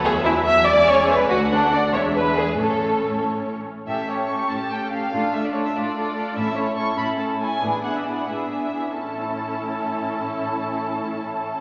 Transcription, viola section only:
\new Staff \with { instrumentName = "Viola section" } { \time 6/8 \key a \major \tempo 4. = 94 <fis b>4. <gis cis'>4. | <a d'>4. <gis d'>4. | <a cis'>2~ <a cis'>8 r8 | <a cis'>8 <a cis'>8 <a cis'>8 <a cis'>8 <a cis'>8 <a cis'>8 |
<a d'>8 <a d'>8 <a d'>8 <a d'>8 <a d'>8 <a d'>8 | <a cis'>8 <a cis'>8 <a cis'>8 <a cis'>8 <a cis'>8 <a cis'>8 | <b d'>8 <b d'>8 <b d'>8 <b d'>8 <b d'>8 <b d'>8 | <cis' e'>2.~ |
<cis' e'>2. | }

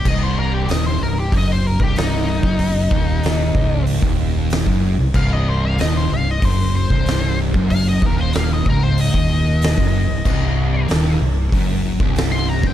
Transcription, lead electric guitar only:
\new Staff \with { instrumentName = "Lead electric guitar" } { \time 4/4 \key c \minor \tempo 4 = 94 ees''16 c''16 bes'16 g'16 ees''16 c''16 bes'16 g'16 ees''16 c''16 bes'16 g'16 ees'4~ | ees'2 r2 | f''16 ees''16 c''16 f''16 ees''16 c''16 f''16 ees''16 c''8 c''4 r8 | f''16 ees''16 bes'16 c''16 f''16 ees''16 bes'16 c''16 ees''2~ |
ees''4 r2 r16 c'''16 bes''16 g''16 | }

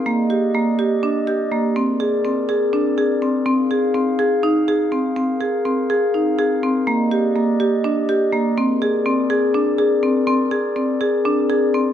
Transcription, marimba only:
\new Staff \with { instrumentName = "Marimba" } { \time 7/8 \key bes \mixolydian \tempo 4 = 123 bes8 g'8 bes8 g'8 d'8 g'8 bes8 | c'8 aes'8 c'8 aes'8 d'8 aes'8 c'8 | c'8 aes'8 c'8 aes'8 ees'8 aes'8 c'8 | c'8 aes'8 c'8 aes'8 ees'8 aes'8 c'8 |
bes8 g'8 bes8 g'8 d'8 g'8 bes8 | c'8 aes'8 c'8 aes'8 d'8 aes'8 c'8 | c'8 aes'8 c'8 aes'8 d'8 aes'8 c'8 | }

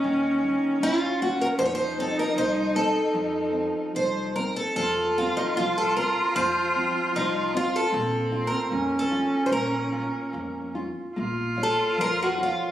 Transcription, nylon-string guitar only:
\new Staff \with { instrumentName = "Nylon-string guitar" } { \time 2/4 \key bes \minor \tempo 4 = 76 ees8 bes8 ees8 bes8 | f8 c'8 f8 c'8 | f8 c'8 f8 c'8 | f8 c'8 f8 c'8 |
f8 c'8 f8 c'8 | bes8 f'8 bes8 f'8 | bes8 f'8 bes8 f'8 | bes8 <f' des''>8 f8 <f' bes' des''>8 | }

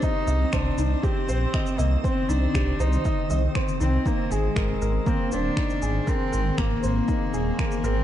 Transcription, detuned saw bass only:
\new Staff \with { instrumentName = "Detuned saw bass" } { \clef bass \time 4/4 \key c \minor \tempo 4 = 119 r8 c,8 c,8 c,8 r8 bes,,8 r8 c,8 | r8 c,8 c,8 c,8 r8 c,8 r8 c,8 | r8 aes,,8 aes,,8 aes,,8 r8 ees,,8 r8 aes,,8 | r8 aes,,8 aes,,8 aes,,8 r8 ees,,8 r8 aes,,8 | }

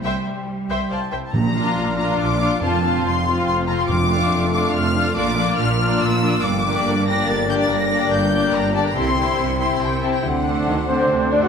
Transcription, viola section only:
\new Staff \with { instrumentName = "Viola section" } { \time 3/4 \key bes \lydian \tempo 4 = 142 << { c''8 r4 c''8 c''8 c''8 | r8 <d' f'>4 <d' f'>4 <d' f'>8 | <c' f'>8 <c' f'>4 <c' f'>4 <c' f'>8 | r8 <a d'>4 <a d'>4 <a d'>8 |
<bes d'>8 <bes d'>4 <bes d'>4 <bes d'>8 | r8 <bes d'>4 <bes d'>4 <bes d'>8~ | <bes d'>8 <bes d'>4 <bes d'>4 <bes d'>8 | <c' e'>8 <c' e'>4 <c' e'>4 <c' e'>8 |
r8 <a d'>4 <a d'>4 <a d'>8 | } \\ { r2. | r2. | r2. | r2. |
r2. | r2. | r2. | r2. |
r4. c'4 d'16 fis'16 | } >> }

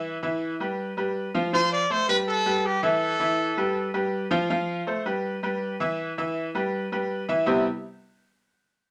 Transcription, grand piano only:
\new Staff \with { instrumentName = "Grand piano" } { \time 4/4 \key c \major \tempo 4 = 162 <e e' e''>8 <e e' e''>4 <g g' b'>4 <g g' b'>4 <f f' f''>8 | <f f' f''>4 <a a' c''>8 <g g' b'>4 <g g' b'>4 <e e' e''>8~ | <e e' e''>8 <e e' e''>4 <g g' b'>4 <g g' b'>4 <f f' f''>8 | <f f' f''>4 <a a' c''>8 <g g' b'>4 <g g' b'>4 <e e' e''>8~ |
<e e' e''>8 <e e' e''>4 <g g' b'>4 <g g' b'>4 <e e' e''>8 | <c g b c' e' g'>8 r2. r8 | }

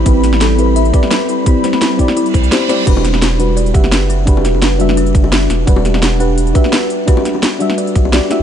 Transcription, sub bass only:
\new Staff \with { instrumentName = "Sub bass" } { \clef bass \time 4/4 \key e \minor \tempo 4 = 171 a,,2~ a,,8 r4. | r2 r8 c,8 r4 | e,,2~ e,,8 fis,,4.~ | fis,,8 e,,16 fis,,2~ fis,,8. e,,8 |
e,,2~ e,,8 r4. | r2 r8 b,,8. r8. | }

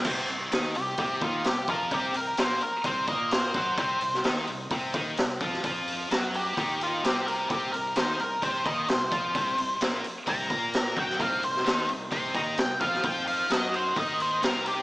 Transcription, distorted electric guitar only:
\new Staff \with { instrumentName = "Distorted electric guitar" } { \clef bass \time 4/4 \key c \minor \tempo 4 = 130 <c c'>8 c8 <ees ees'>8 c8 <c c'>8 <ees ees'>8 c8 <f f'>8 | <c c'>8 c8 <bes, bes>8 r8 <c c'>8 <bes bes'>4 <fis fis'>8 | <c c'>8 c8 <ees ees'>8 c8 <c c'>8 <ees ees'>8 c8 <f f'>8 | <f f'>4 <fis fis'>4 <ees ees'>4 <c c'>4 |
<c c'>8 c8 <ees ees'>8 c8 <c c'>8 <ees ees'>8 c8 <f f'>8 | <c c'>8 c8 <bes, bes>8 r8 <c c'>8 <bes bes'>4 <fis fis'>8 | <c c'>8 c8 <ees ees'>8 c8 <c c'>8 <ees ees'>8 c8 <f f'>8 | <f f'>4 <fis fis'>4 <ees ees'>4 <c c'>4 | }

